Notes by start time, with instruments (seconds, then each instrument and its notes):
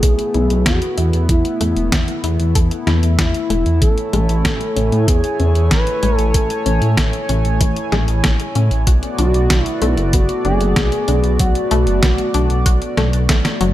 Already playing: analog synth pad A3 B3 E4
0.03 detuned saw bass B1, synth arpeggio sound B3, analog synth lead G#4, kick, closed hi-hat
0.19 closed hi-hat
0.34 detuned saw bass B1, synth arpeggio sound E4, closed hi-hat
0.50 detuned saw bass B1, closed hi-hat
0.66 detuned saw bass E2, analog synth lead F#4, synth arpeggio sound A4, kick, snare, closed hi-hat
0.82 closed hi-hat
0.98 detuned saw bass E2, synth arpeggio sound E4, closed hi-hat
1.13 detuned saw bass E2, closed hi-hat
1.29 detuned saw bass E2, synth arpeggio sound E3, analog synth lead E4, kick, closed hi-hat
1.45 closed hi-hat
1.61 detuned saw bass E2, synth arpeggio sound A3, closed hi-hat
1.76 detuned saw bass E1, closed hi-hat
1.92 detuned saw bass E2, synth arpeggio sound B3, kick, snare, closed hi-hat
2.08 closed hi-hat
2.24 detuned saw bass E2, synth arpeggio sound E4, closed hi-hat
2.39 detuned saw bass E2, closed hi-hat
2.55 detuned saw bass E2, synth arpeggio sound A4, kick, closed hi-hat
2.71 closed hi-hat
2.87 detuned saw bass E2, synth arpeggio sound E4, snare, closed hi-hat
3.03 detuned saw bass E2, closed hi-hat
3.19 detuned saw bass E2, synth arpeggio sound E3, analog synth lead E4, kick, snare, closed hi-hat
3.34 closed hi-hat
3.50 detuned saw bass E1, synth arpeggio sound A3, closed hi-hat
3.66 detuned saw bass E2, closed hi-hat
3.82 detuned saw bass A1, synth arpeggio sound E3, analog synth pad A3 C#5 G#5, analog synth lead A4, kick, closed hi-hat
3.98 closed hi-hat
4.13 detuned saw bass A1, synth arpeggio sound G#3, closed hi-hat
4.29 detuned saw bass A1, closed hi-hat
4.45 detuned saw bass A1, synth arpeggio sound A3, kick, snare, closed hi-hat
4.61 closed hi-hat
4.76 detuned saw bass A1, synth arpeggio sound C#4, closed hi-hat
4.92 detuned saw bass A2, closed hi-hat
5.08 detuned saw bass E2, synth arpeggio sound E4, analog synth lead G#4, kick, closed hi-hat
5.24 closed hi-hat
5.40 detuned saw bass E2, synth arpeggio sound C#4, closed hi-hat
5.55 detuned saw bass E2, closed hi-hat
5.71 detuned saw bass A1, synth arpeggio sound E3, analog synth lead B4, kick, snare, closed hi-hat
5.87 closed hi-hat
6.03 detuned saw bass A1, synth arpeggio sound G#3, closed hi-hat
6.17 detuned saw bass A1, analog synth lead A4, closed hi-hat
6.34 detuned saw bass A1, synth arpeggio sound A3, analog synth lead A4, kick, closed hi-hat
6.50 closed hi-hat
6.66 detuned saw bass A1, synth arpeggio sound C#4, closed hi-hat
6.82 detuned saw bass A2, closed hi-hat
6.97 detuned saw bass A1, synth arpeggio sound E4, kick, snare, closed hi-hat
7.13 closed hi-hat
7.29 detuned saw bass A1, synth arpeggio sound C#4, closed hi-hat
7.45 detuned saw bass A1, closed hi-hat
7.61 detuned saw bass A1, synth arpeggio sound E3, kick, closed hi-hat
7.76 closed hi-hat
7.92 detuned saw bass A1, synth arpeggio sound G#3, snare, closed hi-hat
8.08 detuned saw bass A1, closed hi-hat
8.24 detuned saw bass A1, synth arpeggio sound A3, kick, snare, closed hi-hat
8.40 closed hi-hat
8.55 detuned saw bass A2, synth arpeggio sound C#4, closed hi-hat
8.71 detuned saw bass A1, closed hi-hat
8.87 detuned saw bass B1, analog synth pad A3 B3 F#4 D5, synth arpeggio sound F#4, kick, closed hi-hat
9.03 closed hi-hat
9.18 detuned saw bass B1, synth arpeggio sound D4, analog synth lead F#4, closed hi-hat
9.34 detuned saw bass B1, closed hi-hat
9.50 detuned saw bass B1, synth arpeggio sound F#3, kick, snare, closed hi-hat
9.64 analog synth lead E4, closed hi-hat
9.82 detuned saw bass B1, synth arpeggio sound A3, analog synth lead E4, closed hi-hat
9.97 detuned saw bass F#1, closed hi-hat
10.13 detuned saw bass F#1, synth arpeggio sound B3, analog synth lead F#4, kick, closed hi-hat
10.29 closed hi-hat
10.45 detuned saw bass F#1, synth arpeggio sound D4, analog synth lead G#4, closed hi-hat
10.61 detuned saw bass F#1, closed hi-hat
10.76 detuned saw bass B1, synth arpeggio sound F#4, kick, snare, closed hi-hat
10.92 closed hi-hat
11.08 detuned saw bass B1, synth arpeggio sound D4, closed hi-hat
11.24 detuned saw bass B1, closed hi-hat
11.39 detuned saw bass B1, synth arpeggio sound F#3, analog synth lead F#4, kick, closed hi-hat
11.55 closed hi-hat
11.71 detuned saw bass B1, synth arpeggio sound A3, closed hi-hat
11.87 detuned saw bass F#1, closed hi-hat
12.03 detuned saw bass B1, synth arpeggio sound B3, kick, snare, closed hi-hat
12.18 closed hi-hat
12.34 detuned saw bass B1, synth arpeggio sound D4, closed hi-hat
12.50 detuned saw bass B1, closed hi-hat
12.66 detuned saw bass B1, synth arpeggio sound F#4, kick, closed hi-hat
12.82 closed hi-hat
12.97 detuned saw bass B1, synth arpeggio sound A3, snare, closed hi-hat
13.13 detuned saw bass B1, closed hi-hat
13.29 detuned saw bass B1, synth arpeggio sound A3, kick, snare, closed hi-hat
13.45 snare, closed hi-hat
13.61 detuned saw bass F#1, synth arpeggio sound F#3, closed hi-hat